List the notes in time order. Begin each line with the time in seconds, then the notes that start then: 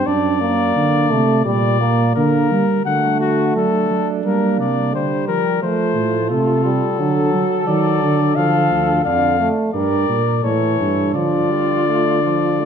0.06 F#2 D4 D5
0.41 A#3
0.76 D3
1.10 C3 A3
1.45 A#2 G3 D5
1.80 A#3
2.16 D3 A#3 A#4
2.51 G3
2.86 D3 A3 F#4 F#5
3.21 F#4
3.55 F#3 D4 A4
3.90 F#3
4.25 G3 A#3 A#4
4.59 C3 D5
4.94 D3 G3 G4 C5
5.28 F3 A#4
5.63 F3 A3 F4 C5
5.97 A2
6.31 C3 A3 A4
6.65 G3
6.99 D3 F#3 A4
7.34 F#3
7.68 D#3 F#3 D5
8.02 D3
8.36 D3 F3 A4 F5
8.71 D2
9.04 F2 D3 D5 F5
9.39 A3
9.74 G2 G3 A#4 D5
10.09 A#2
10.43 A2 E3 A4 C#5
10.80 G2
11.15 D3 F3 F4 D5
11.51 G3
11.87 A3
12.23 F3
12.60 A3